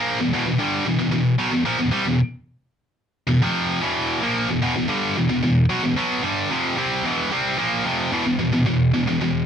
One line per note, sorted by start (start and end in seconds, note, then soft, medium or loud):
0.00 0.19 A#2 loud
0.00 0.19 F3 loud
0.00 0.19 A#3 loud
0.20 0.32 E2 medium
0.20 0.32 B2 medium
0.33 0.45 E2 loud
0.33 0.45 B2 loud
0.46 0.58 E2 medium
0.46 0.59 B2 medium
0.59 0.85 G2 medium
0.59 0.85 D3 loud
0.59 0.85 G3 loud
0.86 0.97 E2 medium
0.86 0.98 B2 medium
0.98 1.10 E2 medium
0.98 1.10 B2 medium
1.11 1.34 E2 medium
1.11 1.34 B2 medium
1.38 1.50 B2 medium
1.38 1.52 F#3 medium
1.51 1.66 E2 medium
1.51 1.65 B2 medium
1.65 1.79 A#2 loud
1.65 1.79 F3 loud
1.78 1.93 E2 medium
1.78 1.91 B2 medium
1.92 2.05 C3 medium
1.92 2.06 G3 medium
2.06 2.20 E2 medium
2.06 2.20 B2 medium
3.27 3.41 E2 medium
3.27 3.41 B2 medium
3.42 3.81 F2 medium
3.42 3.81 C3 loud
3.42 3.82 F3 loud
3.81 4.21 E2 loud
3.81 4.21 B2 loud
3.81 4.22 E3 loud
4.22 4.48 A#2 medium
4.22 4.49 F3 loud
4.22 4.49 A#3 loud
4.49 4.61 E2 medium
4.49 4.62 B2 medium
4.62 4.75 E2 loud
4.62 4.75 B2 loud
4.76 4.88 E2 medium
4.76 4.88 B2 medium
4.88 5.15 G2 medium
4.88 5.15 D3 loud
4.88 5.15 G3 loud
5.17 5.28 E2 medium
5.17 5.29 B2 medium
5.29 5.42 E2 medium
5.29 5.42 B2 medium
5.43 5.65 E2 medium
5.43 5.64 B2 medium
5.69 5.82 B2 medium
5.69 5.82 F#3 loud
5.83 5.97 E2 medium
5.83 5.95 B2 medium
5.96 6.23 B2 medium
5.96 6.23 F#3 loud
5.96 6.23 B3 loud
6.23 6.49 G2 medium
6.23 6.49 D3 medium
6.23 6.50 G3 loud
6.51 6.77 F2 medium
6.51 6.76 C3 medium
6.51 6.77 F3 loud
6.77 7.03 C3 loud
6.77 7.04 G3 loud
6.77 7.04 C4 loud
7.04 7.31 E2 medium
7.04 7.31 B2 loud
7.04 7.31 E3 loud
7.31 7.57 C3 medium
7.31 7.57 G3 medium
7.31 7.58 C4 loud
7.57 7.84 A#2 medium
7.57 7.84 F3 loud
7.57 7.84 A#3 loud
7.85 8.11 F2 medium
7.85 8.12 C3 medium
7.85 8.12 F3 medium
8.12 8.24 E2 medium
8.12 8.24 B2 medium
8.12 8.25 E3 loud
8.26 8.38 E2 medium
8.26 8.38 B2 medium
8.39 8.52 E2 medium
8.39 8.52 B2 medium
8.53 8.65 E2 medium
8.53 8.65 B2 medium
8.66 8.90 E2 medium
8.66 8.90 B2 medium
8.94 9.07 E2 medium
8.94 9.06 B2 medium
9.07 9.20 E2 medium
9.07 9.20 B2 medium
9.21 9.45 E2 medium
9.21 9.45 B2 medium